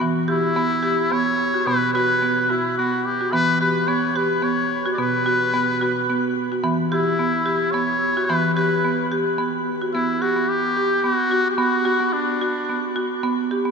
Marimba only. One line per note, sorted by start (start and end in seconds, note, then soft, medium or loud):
0.00 1.64 E3 medium
0.00 0.28 B3 medium
0.28 0.56 G4 medium
0.56 0.84 B3 medium
0.83 1.11 G4 medium
1.12 1.39 B3 medium
1.54 1.67 F#4 medium
1.66 3.29 B2 medium
1.66 1.95 B3 medium
1.95 2.23 F#4 medium
2.22 2.50 B3 medium
2.50 2.78 F#4 medium
2.79 3.06 B3 medium
3.21 3.33 F#4 medium
3.33 4.95 E3 medium
3.33 3.61 B3 medium
3.61 3.88 G4 medium
3.88 4.16 B3 medium
4.16 4.43 G4 medium
4.42 4.71 B3 medium
4.86 4.98 F#4 medium
4.98 6.61 B2 medium
4.98 5.26 B3 medium
5.26 5.54 F#4 medium
5.54 5.81 B3 medium
5.82 6.09 F#4 medium
6.09 6.37 B3 medium
6.52 6.64 F#4 medium
6.64 8.26 E3 medium
6.64 6.91 B3 medium
6.92 7.19 G4 medium
7.19 7.47 B3 medium
7.46 7.74 G4 medium
7.74 8.02 B3 medium
8.17 8.30 F#4 medium
8.29 9.91 E3 medium
8.29 8.57 B3 medium
8.57 8.84 G4 medium
8.85 9.12 B3 medium
9.12 9.39 G4 medium
9.38 9.66 B3 medium
9.82 9.94 F#4 medium
9.95 10.22 B3 medium
10.22 10.37 G4 medium
10.36 10.64 B3 soft
10.77 11.04 G4 medium
11.04 11.31 B3 medium
11.31 11.59 F#4 medium
11.58 11.86 B3 medium
11.85 12.01 F#4 medium
12.00 12.28 B3 medium
12.42 12.69 F#4 medium
12.69 12.96 B3 medium
12.96 13.23 F#4 medium
13.24 13.51 B3 medium
13.51 13.66 G4 medium
13.65 13.71 B3 medium